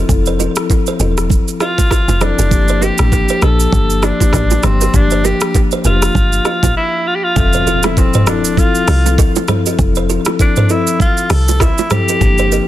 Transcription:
0.08 log drum bass F1, marimba F3 C4 E4 A4, kick, low conga, shaker
0.26 kalimba A4 C5, shaker
0.39 kalimba F4 A4, low bongo, shaker
0.56 marimba F3 C4 E4 A4, cross-stick, shaker
0.70 kick, high bongo, shaker
0.86 kalimba A4 C5, shaker
1.00 log drum bass E1, marimba F3 C4 E4 A4, kalimba F4 A4, shaker
1.18 cross-stick, shaker
1.30 kick, low conga, shaker
1.48 shaker
1.60 kalimba E4 G4, tenor saxophone F4, cross-stick, shaker
1.78 kick, low bongo, shaker
1.91 kalimba F4 A4, kick, cross-stick, high bongo, shaker
2.08 log drum bass F1, low bongo, shaker
2.21 marimba F3 C4 E4 A4, tenor saxophone D4, kalimba A4 C5, cross-stick, low conga, shaker
2.39 log drum bass F1, kalimba F4 A4, shaker
2.51 log drum bass G1, marimba F3 A#3 D4 G4, kick, low conga, shaker
2.68 kalimba A4 C5, shaker
2.81 tenor saxophone G4, kalimba G4 A#4, low bongo, shaker
2.98 log drum bass A1, marimba F3 A#3 D4 G4, cross-stick, shaker
3.12 kick, high bongo, shaker
3.29 kalimba A4 C5, shaker
3.42 log drum bass A#1, marimba F3 A#3 D4 G4, kalimba G4 A#4, tenor saxophone A4, cross-stick, shaker
3.60 shaker
3.72 log drum bass G1, marimba F3 A#3 D4 G4, kick, low conga, shaker
3.90 shaker
4.03 tenor saxophone D4, kalimba F4 A4, cross-stick, shaker
4.20 marimba F3 A#3 D4 G4, kick, low bongo, shaker
4.33 log drum bass A1, kalimba G4 A#4, kick, cross-stick, high bongo, shaker
4.50 low bongo, shaker
4.63 log drum bass G1, marimba F3 A#3 D4 G4, tenor saxophone C4, kalimba A4 C5, cross-stick, low conga, shaker
4.81 kalimba G4 A#4, shaker
4.94 log drum bass G1, marimba F3 A#3 D4 G4, tenor saxophone D4, kick, low conga, shaker
5.11 kalimba A4 C5, shaker
5.24 tenor saxophone G4, kalimba G4 A#4, low bongo, shaker
5.41 marimba F3 A#3 D4 G4, cross-stick, shaker
5.54 kick, high bongo, shaker
5.71 kalimba A4 C5, shaker
5.84 log drum bass F1, marimba F3 A#3 D4 G4, tenor saxophone F4, kalimba G4 A#4, shaker
6.02 cross-stick, shaker
6.15 log drum bass G1, kick, low conga, shaker
6.32 shaker
6.45 kalimba F4 A4, cross-stick, shaker
6.63 log drum bass A1, kick, low bongo, shaker
6.77 tenor saxophone E4
7.07 tenor saxophone F4
7.15 tenor saxophone G4
7.24 tenor saxophone F4
7.36 log drum bass F1, marimba F3 C4 A4 E5, kick, impact, low conga, shaker
7.53 kalimba A4 C5, shaker
7.67 kalimba F4 A4, shaker
7.83 marimba F3 C4 E4 A4, tenor saxophone E4, cross-stick, low bongo, shaker
7.97 tenor saxophone C4, kick, high bongo, shaker
8.14 kalimba A4 C5, mid tom, shaker
8.27 marimba F3 C4 E4 A4, tenor saxophone D4, kalimba F4 A4, cross-stick, shaker
8.45 shaker
8.57 marimba F3 C4 E4 A4, tenor saxophone F4, kick, low conga, shaker
8.75 shaker
8.88 log drum bass C2, kalimba E4 G4, cross-stick, open hi-hat, shaker
9.05 marimba F3 C4 E4 A4, low bongo, shaker
9.18 kalimba F4 A4, kick, high bongo, shaker
9.36 low bongo, shaker
9.48 marimba F3 C4 E4 A4, kalimba A4 C5, cross-stick, mid tom, low conga, shaker
9.66 kalimba F4 A4, shaker
9.78 log drum bass F1, marimba F3 C4 E4 A4, kick, low conga, shaker
9.95 kalimba A4 C5, shaker
10.09 kalimba F4 A4, shaker
10.25 marimba F3 C4 E4 A4, cross-stick, low bongo, shaker
10.39 tenor saxophone D4, kick, high bongo, shaker
10.56 kalimba A4 C5, mid tom, shaker
10.69 marimba F3 C4 E4 A4, tenor saxophone E4, kalimba F4 A4, shaker
10.87 shaker
11.00 tenor saxophone F4, kick, low conga, shaker
11.17 shaker
11.30 log drum bass C2, kalimba E4 G4, tenor saxophone A4, cross-stick, open hi-hat, shaker
11.48 low bongo, shaker
11.60 tenor saxophone E4, kalimba F4 A4, kick, cross-stick, high bongo, shaker
11.78 low bongo, shaker
11.90 marimba F3 C4 E4 A4, tenor saxophone G4, kalimba A4 C5, cross-stick, mid tom, low conga, shaker
12.08 kalimba F4 A4, shaker
12.21 log drum bass G1, marimba F3 A#3 D4 G4, kick, low conga, shaker
12.38 kalimba A4 C5, shaker
12.52 kalimba G4 A#4, shaker

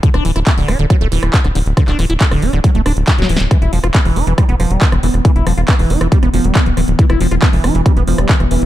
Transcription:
0.03 acid bass D3, kick, closed hi-hat
0.14 analog synth bass D1, acid bass D4, cross-stick, closed hi-hat
0.25 analog synth bass D1, acid bass E3, open hi-hat
0.36 analog synth bass D1, acid bass E4, cross-stick, closed hi-hat
0.47 acid bass A3, kick, clap, closed hi-hat
0.57 analog synth bass D1, acid bass D3, open hi-hat
0.68 analog synth bass D1, acid bass D4, cross-stick, open hi-hat
0.79 analog synth bass D1, acid bass D3, closed hi-hat
0.90 acid bass F#3, kick, cross-stick, closed hi-hat
1.01 analog synth bass D1, acid bass A3, closed hi-hat
1.12 analog synth bass D1, acid bass E3, open hi-hat
1.23 analog synth bass D1, cross-stick, closed hi-hat
1.34 acid bass C#3, kick, clap, closed hi-hat
1.44 analog synth bass D1, acid bass D3, cross-stick, closed hi-hat
1.55 analog synth bass D1, acid bass D3, open hi-hat
1.66 analog synth bass D1, closed hi-hat
1.77 acid bass D3, kick, cross-stick, closed hi-hat
1.88 analog synth bass D1, acid bass D4, clap, closed hi-hat
1.99 analog synth bass D1, acid bass E3, cross-stick, open hi-hat
2.10 analog synth bass D1, acid bass E4, closed hi-hat
2.21 acid bass A3, kick, clap, closed hi-hat
2.31 analog synth bass D1, acid bass D3, cross-stick, open hi-hat
2.42 analog synth bass D1, acid bass D4, open hi-hat
2.53 analog synth bass D1, acid bass D3, cross-stick, closed hi-hat
2.64 acid bass F#3, kick, closed hi-hat
2.75 analog synth bass D1, acid bass A3, closed hi-hat
2.86 analog synth bass D1, acid bass D4, cross-stick, open hi-hat
2.97 analog synth bass D1, closed hi-hat
3.07 acid bass D3, kick, snare, clap, closed hi-hat
3.18 analog synth bass D1, acid bass F#3, snare, closed hi-hat
3.29 analog synth bass D1, acid bass E3, open hi-hat
3.37 analog synth bass D1, snare, closed hi-hat
3.51 acid bass E3, synth texture E3 B3, kick, cross-stick, closed hi-hat
3.62 analog synth bass E1, acid bass E4, closed hi-hat
3.73 analog synth bass E1, acid bass F3, open hi-hat
3.84 analog synth bass E1, acid bass F4, cross-stick, closed hi-hat
3.94 acid bass B3, kick, clap, closed hi-hat
4.05 analog synth bass E1, acid bass E3, cross-stick, open hi-hat
4.16 analog synth bass E1, acid bass E4, open hi-hat
4.27 analog synth bass E1, acid bass E3, closed hi-hat
4.38 acid bass G3, kick, cross-stick, closed hi-hat
4.49 analog synth bass E1, acid bass B3, closed hi-hat
4.60 analog synth bass E1, acid bass F3, cross-stick, open hi-hat
4.71 analog synth bass E1, acid bass G3, closed hi-hat
4.81 acid bass D3, kick, clap, closed hi-hat
4.92 analog synth bass E1, acid bass E3, cross-stick, closed hi-hat
5.03 analog synth bass E1, acid bass E3, open hi-hat
5.14 analog synth bass E1, cross-stick, closed hi-hat
5.25 acid bass E3, kick, closed hi-hat
5.36 analog synth bass E1, acid bass E4, closed hi-hat
5.47 analog synth bass E1, acid bass F3, cross-stick, open hi-hat
5.57 analog synth bass E1, acid bass F4, closed hi-hat
5.68 acid bass B3, kick, cross-stick, clap, closed hi-hat
5.79 analog synth bass E1, acid bass E3, open hi-hat
5.90 analog synth bass E1, acid bass E4, open hi-hat
6.01 analog synth bass E1, acid bass E3, cross-stick, closed hi-hat
6.12 acid bass G3, kick, closed hi-hat
6.23 analog synth bass E1, acid bass B3, cross-stick, closed hi-hat
6.34 analog synth bass E1, acid bass F3, open hi-hat
6.44 analog synth bass E1, acid bass G3, closed hi-hat
6.55 acid bass D3, kick, cross-stick, clap, closed hi-hat
6.66 analog synth bass D1, acid bass E3, closed hi-hat
6.77 analog synth bass D1, acid bass E3, cross-stick, open hi-hat
6.88 analog synth bass D1, closed hi-hat
6.99 acid bass E3, kick, closed hi-hat
7.10 analog synth bass E1, acid bass E4, cross-stick, closed hi-hat
7.21 analog synth bass E1, acid bass F3, open hi-hat
7.31 analog synth bass E1, acid bass F4, cross-stick, closed hi-hat
7.42 acid bass B3, kick, clap, closed hi-hat
7.53 analog synth bass E1, acid bass E3, open hi-hat
7.64 analog synth bass E1, acid bass E4, cross-stick, open hi-hat
7.75 analog synth bass E1, acid bass E3, closed hi-hat
7.86 acid bass G3, kick, cross-stick, closed hi-hat
7.97 analog synth bass E1, acid bass B3, closed hi-hat
8.07 analog synth bass E1, acid bass F3, open hi-hat
8.18 analog synth bass E1, acid bass G3, cross-stick, closed hi-hat
8.29 acid bass D3, kick, clap, closed hi-hat
8.40 analog synth bass E1, acid bass E3, cross-stick, closed hi-hat
8.51 analog synth bass E1, acid bass E3, open hi-hat
8.62 analog synth bass E1

